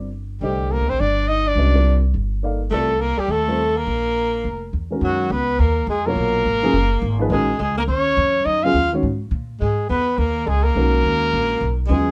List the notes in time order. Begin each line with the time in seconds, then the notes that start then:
Already playing: G1
0.41 C2 D3 G3 A3 G4 C5 D#5
0.71 A#3 A#4
0.81 D2
0.88 A#1 C4 C5
1.00 G1 D4 D5
1.28 D#4 D#5
1.46 D4 D5
1.55 C2 G#3 C#4 F#4 B4 D#5
1.74 G3 C4 F4 A#4 D5
2.14 G1
2.43 A#3 D#4 A4 D5 F5
2.71 C2 G3 A3 C4 F4 A4 A#4 D5
3.01 A#3 A#4
3.18 G3 G4, muted upright bass stroke
3.28 D#2 A3 A4
3.48 G3 C4 F4 A#4 C5
3.77 A#3 A#4
3.87 A#1
4.44 F1
4.73 E2
4.91 D#3 G#3 C#4 F#4 A#4
5.01 F#2 F#3 F#4
5.30 C#2 B3 B4
5.59 D#2 A#3 A#4
5.87 F2 G#3 G#4
6.06 B2 F#3 A#3 F4 A#4 C#5
6.16 A#1
6.45 G#1
6.63 C#3 F#3 B3 F4 G#4
6.73 F#1
7.02 G#1
7.19 F3 A#3 D#4 G#4 B4
7.30 A#1 D#3 G#3 C#4 F#4 G#4 A#4
7.59 C#2 G#3 G#4
7.78 A#3 A#4
7.88 D#2 C#4 C#5
8.17 F2
8.45 F#2 D#4 D#5
8.63 C#3 F#3 B3 F4 G#4 F5
8.74 D#2
8.93 D#3 G#3 C#4 F#4 C#5
9.03 G#2
9.31 A#2
9.60 G#2 G#3 G#4
9.89 E2 B3 B4
10.18 D#2 A#3 A#4
10.47 C#2 G#3 G#4
10.63 A#3 A#4
10.75 B1 D#3 G#3 C#4 F#4 A#4
11.03 D#2
11.33 A#1
11.61 B1
11.87 D#2 C#3 F#3 G#3 B3 F4 G#4
11.91 G#4